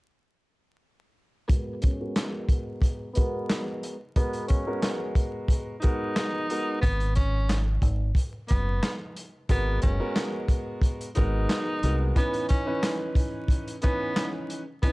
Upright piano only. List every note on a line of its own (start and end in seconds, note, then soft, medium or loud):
1.49 1.96 G#3 medium
1.49 1.96 B3 medium
1.49 1.96 F#4 medium
1.49 1.97 A#4 loud
2.00 3.07 G#3 medium
2.00 3.07 B3 medium
2.00 3.07 F#4 medium
2.00 3.07 A#4 loud
3.16 3.94 G#3 medium
3.16 3.94 B3 medium
3.16 3.94 F#4 medium
3.16 3.94 A#4 loud
4.16 4.63 G#3 medium
4.16 4.63 B3 medium
4.16 4.63 F#4 medium
4.16 4.63 A#4 medium
4.67 5.74 G#3 medium
4.67 5.74 B3 medium
4.67 5.74 F#4 medium
4.67 5.74 A#4 loud
5.82 6.44 G#3 medium
5.82 6.44 B3 medium
5.82 6.45 F#4 medium
5.82 6.45 A#4 medium
6.50 6.81 G#3 medium
6.50 6.81 B3 medium
6.50 6.81 F#4 medium
6.50 6.81 A#4 medium
9.49 9.96 G#3 medium
9.49 9.96 B3 medium
9.49 9.97 F#4 medium
9.49 9.97 A#4 loud
10.00 11.07 G#3 medium
10.00 11.07 B3 medium
10.00 11.07 F#4 medium
10.00 11.07 A#4 loud
11.15 11.78 G#3 medium
11.15 11.78 B3 medium
11.15 11.78 F#4 medium
11.15 11.78 A#4 medium
11.84 12.14 G#3 medium
11.84 12.14 B3 medium
11.84 12.14 F#4 medium
11.84 12.14 A#4 medium
12.16 12.63 E3 medium
12.16 12.63 C#4 medium
12.16 12.63 D#4 medium
12.16 12.63 B4 loud
12.66 13.74 E3 medium
12.66 13.74 C#4 medium
12.66 13.74 D#4 medium
12.66 13.74 B4 loud
13.83 14.60 E3 medium
13.83 14.60 C#4 medium
13.83 14.61 D#4 medium
13.83 14.61 B4 loud
14.84 14.92 E3 medium
14.84 14.92 C#4 medium
14.84 14.92 D#4 medium
14.84 14.92 B4 loud